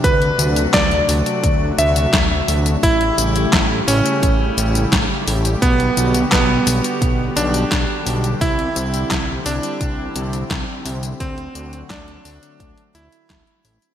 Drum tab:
HH |xxxxxxoxx-xxx-ox|xxxxx-oxx-xxx-ox|xxxxx-oxx-xxx-ox|xxxxx-oxx-xxx-ox|
TB |x-xxx-xxx-xxx-xx|x-xxx-xxx-xxx-xx|x-xxx-xxx-xxx-xx|x-xxx-xxx-xxx-xx|
CP |----x-------x---|----x-------x---|----x-------x---|----x-------x---|
SD |----o-------o---|----o-------o---|----o-------o---|----o-------o---|
BD |o---o---o---o---|o---o---o---o---|o---o---o---o---|o---o---o---o---|

HH |xxxxxxoxxxxxxxox|
TB |x-xxx-xxx-xxx-xx|
CP |----x-------x---|
SD |----o-------o---|
BD |o---o---o---o---|